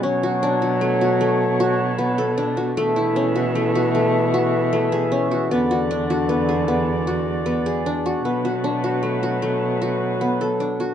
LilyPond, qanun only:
\new Staff \with { instrumentName = "Qanun" } { \time 7/4 \key b \dorian \tempo 4 = 153 cis'8 fis'8 d'8 fis'8 a8 fis'8 a4 fis'4 b8 a'8 d'8 fis'8 | a8 e'8 cis'8 fis'8 a8 fis'8 a4 fis'4 a8 gis'8 cis'8 fis'8 | b8 fis'8 d'8 fis'8 b8 gis'8 b4 fis'4 b8 gis'8 d'8 fis'8 | b8 fis'8 d'8 fis'8 a8 fis'8 a4 fis'4 b8 a'8 d'8 fis'8 | }